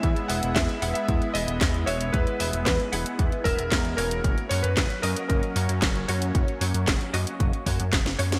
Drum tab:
HH |xxoxxxoxxxoxxxox|xxoxxxoxxxoxxxox|xxoxxxoxxxoxxxox|xxoxxxoxxxoxxxox|
CP |----x-------x---|----x-------x---|----x-------x---|----x-------x---|
SD |----o-------o---|----o-------o---|----o-------o---|----o-------oo-o|
BD |o---o---o---o---|o---o---o-o-o---|o---o---o---o---|o---o---o-o-o---|